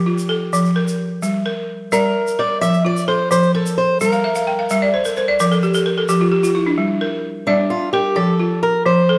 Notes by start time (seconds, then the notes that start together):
Already playing: F3 G4
0.06 F4
0.18 shaker
0.29 A4
0.53 F3, shaker
0.65 shaker
0.76 A#4
0.88 shaker
1.22 G3, shaker
1.46 A#4
1.92 G3 A#4 D5, shaker
2.27 shaker
2.39 A#4 D5
2.61 F3 E5, shaker
2.74 shaker
2.85 F4 D5
2.97 shaker
3.08 A4 C5
3.31 F3 C5, shaker
3.43 shaker
3.55 A4 A#4
3.66 shaker
3.78 C5
4.00 G3 A#4, shaker
4.12 F5, shaker
4.24 E5
4.35 F5, shaker
4.47 G5
4.59 F5
4.70 G3 E5, shaker
4.82 D5
4.89 A4
4.94 C5
5.05 A#4, shaker
5.16 C5, shaker
5.28 D5
5.40 F3 A#4, shaker
5.51 A4, shaker
5.63 G4, shaker
5.74 A4, shaker
5.86 A#4
5.98 A4
6.09 F3 G4, shaker
6.21 F4
6.32 G4
6.43 F4, shaker
6.55 E4
6.66 D4
6.78 G3
7.01 A#4
7.47 G3 D4 D5
7.70 F4
7.93 G4 A#4
8.16 F3 A4
8.39 F4
8.63 A#4
8.86 F3 C5
9.09 A4